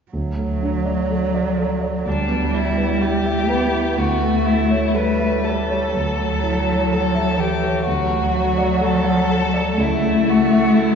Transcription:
0.12 grand piano D2, cello F#3
0.37 grand piano A3
0.62 grand piano D4
0.86 grand piano D5
1.10 grand piano A4
1.34 grand piano D5
1.58 grand piano A4
1.81 grand piano D5
2.05 grand piano D2, cello G3, violin D4
2.28 grand piano B3
2.53 grand piano E4, violin E4
2.77 grand piano B4
3.01 grand piano E4, violin G4
3.26 grand piano E5
3.49 cello B3, grand piano B4
3.74 grand piano E4
3.90 cello B3
3.97 grand piano D2, cello A3, violin F#4
4.22 grand piano A3
4.45 violin E4, grand piano E4
4.70 grand piano C#5
4.95 cello G3, grand piano A4, violin B4
5.19 grand piano E5
5.44 violin A4, grand piano A4
5.68 grand piano C#5
5.93 grand piano D2, cello F#3
6.19 grand piano A3
6.43 grand piano E4
6.67 grand piano C#5
6.91 violin A4, grand piano A4
7.15 grand piano E5
7.37 cello E3, violin G4, grand piano A4
7.63 grand piano C#5
7.85 grand piano D2, cello F#3, violin F#4
8.10 grand piano A3
8.34 grand piano F#4
8.58 grand piano D5
8.81 grand piano A4, violin A4
9.04 grand piano F#5
9.30 grand piano A4
9.54 grand piano D5
9.77 grand piano C#2, cello A3, violin E4
10.01 grand piano A3
10.26 grand piano E4, violin F#4
10.51 grand piano E5
10.74 violin E4, grand piano A4

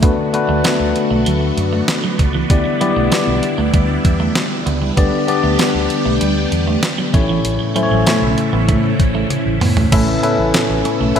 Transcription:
0.02 fingered electric bass D2, tine electric piano D3 A3 D4 F#4 B4, string machine A3 B3 D4 F#4, clean electric guitar B3, kick, closed hi-hat
0.33 tine electric piano A3 D4 F#4 B4, muted clean electric guitar stroke, closed hi-hat
0.49 fingered electric bass D2, clean electric guitar A3
0.64 clean electric guitar B3, snare, closed hi-hat, tambourine
0.80 fingered electric bass D2, muted clean electric guitar stroke
0.96 closed hi-hat
1.11 fingered electric bass B1, clean electric guitar A3
1.26 fingered electric bass D2, clean electric guitar F#3, closed hi-hat
1.57 fingered electric bass F#2, muted clean electric guitar stroke, closed hi-hat
1.73 clean electric guitar A3
1.88 snare, closed hi-hat, tambourine
2.04 clean electric guitar F#3
2.19 fingered electric bass C#2, muted clean electric guitar stroke, kick, closed hi-hat
2.34 clean electric guitar E3
2.50 fingered electric bass D2, tine electric piano D3 B3 E4 G4 D5, string machine G3 E4, kick, closed hi-hat
2.66 muted clean electric guitar stroke
2.80 clean electric guitar F#3, tine electric piano B3 E4 G4 D5, closed hi-hat
2.96 fingered electric bass B1, clean electric guitar A3
3.12 clean electric guitar B3, snare, closed hi-hat, tambourine
3.27 fingered electric bass B1
3.43 muted clean electric guitar stroke, closed hi-hat
3.58 fingered electric bass D2, clean electric guitar A3
3.74 fingered electric bass D2, clean electric guitar G3, kick, closed hi-hat
3.89 muted clean electric guitar stroke
4.05 fingered electric bass E2, kick, closed hi-hat
4.20 clean electric guitar A3
4.35 muted clean electric guitar stroke, snare, closed hi-hat, tambourine
4.66 fingered electric bass C#2, clean electric guitar B3, closed hi-hat
4.82 clean electric guitar G3
4.97 fingered electric bass D2, tine electric piano D3 B3 D4 G4 D5, clean electric guitar G3, string machine B3 G4, kick, closed hi-hat
5.28 tine electric piano B3 D4 G4 D5, muted clean electric guitar stroke, closed hi-hat
5.43 fingered electric bass D2, clean electric guitar A3
5.59 clean electric guitar B3, snare, closed hi-hat, tambourine
5.74 fingered electric bass D2, muted clean electric guitar stroke
5.90 closed hi-hat
6.05 fingered electric bass B1, clean electric guitar A3
6.21 fingered electric bass D2, clean electric guitar G3, closed hi-hat
6.52 fingered electric bass E2, muted clean electric guitar stroke, closed hi-hat
6.67 clean electric guitar A3
6.83 snare, closed hi-hat, tambourine
6.98 clean electric guitar F#3
7.13 fingered electric bass A1, tine electric piano A2 A3 C#4 E4 C#5, string machine C#3 E3 A3 E4, muted clean electric guitar stroke, kick, closed hi-hat
7.29 clean electric guitar E3
7.45 fingered electric bass A1, closed hi-hat
7.60 muted clean electric guitar stroke
7.75 clean electric guitar F#3, tine electric piano A3 C#4 E4 C5, closed hi-hat
7.83 tine electric piano C#5
7.91 fingered electric bass A1, clean electric guitar F#3
8.07 clean electric guitar A3, snare, closed hi-hat, tambourine
8.22 fingered electric bass B1
8.38 muted clean electric guitar stroke, closed hi-hat
8.53 fingered electric bass A1, clean electric guitar B3
8.69 fingered electric bass A2, clean electric guitar A3, kick, closed hi-hat
8.84 muted clean electric guitar stroke
9.00 fingered electric bass A1, kick, closed hi-hat
9.15 clean electric guitar A3
9.30 muted clean electric guitar stroke, muted fingered electric bass stroke, closed hi-hat, high tom
9.46 fingered electric bass A1
9.61 fingered electric bass A2, clean electric guitar B3, mid tom, open hi-hat
9.77 clean electric guitar A3, floor tom
9.92 fingered electric bass A1, tine electric piano A2 C#4 E4 A4 B4 E5, string machine C#3 A3 B3 E4, clean electric guitar A3, kick, closed hi-hat, crash
10.08 muted clean electric guitar stroke
10.22 clean electric guitar B3, tine electric piano C#4 E4 A4 B4 E5, closed hi-hat
10.39 fingered electric bass A1
10.54 muted clean electric guitar stroke, snare, closed hi-hat, tambourine
10.70 fingered electric bass A1
10.85 clean electric guitar C#4, closed hi-hat
11.00 fingered electric bass B1, clean electric guitar A3
11.15 fingered electric bass A1, tine electric piano C#4 E4 A4 B4 E5, muted clean electric guitar stroke, closed hi-hat

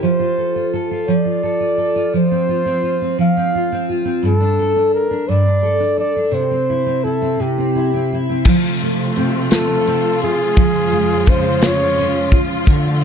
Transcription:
Already playing: steel-string acoustic guitar G4
0.02 steel-string acoustic guitar F3, flugelhorn C5
0.19 steel-string acoustic guitar F4
0.37 steel-string acoustic guitar A4
0.55 steel-string acoustic guitar F4
0.73 steel-string acoustic guitar A4
0.91 steel-string acoustic guitar F4
1.08 steel-string acoustic guitar F3, flugelhorn D5
1.25 steel-string acoustic guitar F4
1.43 steel-string acoustic guitar A4
1.60 steel-string acoustic guitar F4
1.77 steel-string acoustic guitar A4
1.96 steel-string acoustic guitar F4
2.13 steel-string acoustic guitar F3, flugelhorn C5
2.31 steel-string acoustic guitar C4
2.48 steel-string acoustic guitar F4
2.66 steel-string acoustic guitar C4
2.83 steel-string acoustic guitar F4
3.01 steel-string acoustic guitar C4
3.18 steel-string acoustic guitar F3, flugelhorn F5
3.37 steel-string acoustic guitar C4
3.55 steel-string acoustic guitar F4
3.72 steel-string acoustic guitar C4
3.89 steel-string acoustic guitar F4
4.05 steel-string acoustic guitar C4
4.22 steel-string acoustic guitar G2, flugelhorn A4
4.40 steel-string acoustic guitar D4
4.59 steel-string acoustic guitar A4
4.76 steel-string acoustic guitar D4
4.94 flugelhorn A#4
5.11 steel-string acoustic guitar D4
5.28 steel-string acoustic guitar G2, flugelhorn D5
5.46 steel-string acoustic guitar D4
5.63 steel-string acoustic guitar A4
5.80 steel-string acoustic guitar D4
5.98 steel-string acoustic guitar A4, flugelhorn D5
6.16 steel-string acoustic guitar D4
6.31 steel-string acoustic guitar C3, flugelhorn C5
6.51 steel-string acoustic guitar C4
6.70 steel-string acoustic guitar E4
6.86 steel-string acoustic guitar C4
7.04 steel-string acoustic guitar E4, flugelhorn A4
7.22 steel-string acoustic guitar C4
7.40 steel-string acoustic guitar C3, flugelhorn G4
7.58 steel-string acoustic guitar C4
7.75 steel-string acoustic guitar E4
7.94 steel-string acoustic guitar C4
8.12 steel-string acoustic guitar E4
8.29 steel-string acoustic guitar C4
8.44 string section C3 F3 A3 F4, steel-string acoustic guitar F3, kick, crash
8.81 steel-string acoustic guitar A3, closed hi-hat
9.16 steel-string acoustic guitar C4, closed hi-hat
9.51 steel-string acoustic guitar F4, flugelhorn A4, snare, closed hi-hat
9.87 steel-string acoustic guitar C4, closed hi-hat
10.22 steel-string acoustic guitar F4, flugelhorn G#4, closed hi-hat
10.55 string section F2 C#3 G#3, steel-string acoustic guitar F3, kick, closed hi-hat
10.92 steel-string acoustic guitar G#3, closed hi-hat
11.26 steel-string acoustic guitar C#4, flugelhorn C5, kick, closed hi-hat
11.62 steel-string acoustic guitar F4, snare, closed hi-hat
11.66 flugelhorn C#5
11.98 steel-string acoustic guitar C#4, closed hi-hat
12.32 steel-string acoustic guitar F4, kick, closed hi-hat
12.67 string section D3 A3, steel-string acoustic guitar D3, kick, closed hi-hat
13.01 closed hi-hat

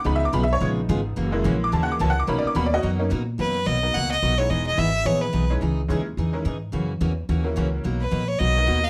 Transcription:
0.04 upright bass C#2, steel-string acoustic guitar C#3 G#3 B3 F4 G#4, honky-tonk piano F3 B3 D#4 B5
0.16 honky-tonk piano E5
0.25 honky-tonk piano D6
0.33 upright bass B1, steel-string acoustic guitar C#3 G#3 B3 F4 G#4, honky-tonk piano B5
0.43 honky-tonk piano E5
0.53 honky-tonk piano C#5
0.60 upright bass A#1, steel-string acoustic guitar C#3 G#3 B3 F4 G#4
0.89 upright bass G#1, steel-string acoustic guitar C#3 G#3 B3 F4 G#4
1.16 upright bass F#1, steel-string acoustic guitar C#3 E3 A#3 C#4 F#4
1.32 honky-tonk piano G#3 A#3 E4
1.44 upright bass A#1, steel-string acoustic guitar C#3 E3 A#3 C#4 F#4
1.64 honky-tonk piano D6
1.72 upright bass D#2, steel-string acoustic guitar C#3 E3 A#3 C#4 F#4, honky-tonk piano A5
1.83 honky-tonk piano F#5
1.92 honky-tonk piano D6
1.99 upright bass C#2, steel-string acoustic guitar C#3 E3 A#3 C#4 F#4, honky-tonk piano A5
2.10 honky-tonk piano F#5
2.20 honky-tonk piano D6
2.27 upright bass B1, steel-string acoustic guitar B2 F#3 A#3 D#4 F#4, honky-tonk piano A#3 C#4 D#4 B5
2.38 honky-tonk piano D5
2.45 honky-tonk piano D6, muted upright bass stroke
2.55 upright bass D#2, steel-string acoustic guitar B2 F#3 A#3 D#4 F#4, honky-tonk piano B5
2.66 honky-tonk piano D5
2.74 honky-tonk piano F#4 D#5
2.83 upright bass F#2, steel-string acoustic guitar B2 F#3 A#3 D#4 F#4
2.99 honky-tonk piano A#3 C#4 D#4
3.10 upright bass A#2, steel-string acoustic guitar B2 F#3 A#3 D#4 F#4
3.38 upright bass F#2, steel-string acoustic guitar B2 F#3 A#3 D#4 F#4, fiddle B4
3.65 upright bass B1, steel-string acoustic guitar B2 F#3 A#3 D#4 F#4, fiddle D#5
3.82 honky-tonk piano A#3 B3 D#4 F#4 A#4
3.94 upright bass C#2, steel-string acoustic guitar B2 F#3 A#3 D#4 F#4, fiddle F#5
4.12 fiddle D#5
4.22 upright bass B1, steel-string acoustic guitar B2 F#3 A#3 D#4 F#4
4.38 honky-tonk piano G#3 B3 D#4 E4 G#4, fiddle C#5
4.50 upright bass E1, steel-string acoustic guitar E3 B3 D#4 G#4, fiddle D#5
4.67 fiddle D#5
4.77 upright bass G#1, steel-string acoustic guitar E3 B3 D#4 G#4, fiddle E5
5.05 upright bass A#1, steel-string acoustic guitar E3 B3 D#4 G#4, fiddle C#5
5.22 fiddle B4
5.33 upright bass B1, steel-string acoustic guitar E3 B3 D#4 G#4
5.50 honky-tonk piano G#3 C#4 D#4 E4 G#4
5.61 upright bass C#2, steel-string acoustic guitar C#3 E3 D#4 G#4
5.88 upright bass D#2, steel-string acoustic guitar C#3 E3 D#4 G#4, honky-tonk piano G#3 C#4 D#4 E4 G#4
6.17 upright bass E2, steel-string acoustic guitar C#3 E3 D#4 G#4
6.33 honky-tonk piano G#3 C#4 D#4 E4 A#4
6.45 upright bass G#2, steel-string acoustic guitar C#3 E3 D#4 G#4
6.72 upright bass F#2, steel-string acoustic guitar C#3 E3 A#3 C#4 F#4
7.01 upright bass E2, steel-string acoustic guitar C#3 E3 A#3 C#4 F#4
7.29 upright bass D#2, steel-string acoustic guitar C#3 E3 A#3 C#4 F#4
7.44 honky-tonk piano A#3 C#4 E4 F#4 A#4
7.56 upright bass C#2, steel-string acoustic guitar C#3 E3 A#3 C#4 F#4
7.84 upright bass B1, steel-string acoustic guitar B2 F#3 A#3 D#4 F#4
8.01 fiddle B4
8.11 upright bass A#1, steel-string acoustic guitar B2 F#3 A#3 D#4 F#4
8.28 fiddle C#5
8.39 upright bass B1, steel-string acoustic guitar B2 F#3 A#3 D#4 F#4, fiddle D#5
8.57 honky-tonk piano A#3 B3 D#4 F#4 A#4
8.67 upright bass D#2, steel-string acoustic guitar B2 F#3 A#3 D#4 F#4
8.84 fiddle F5

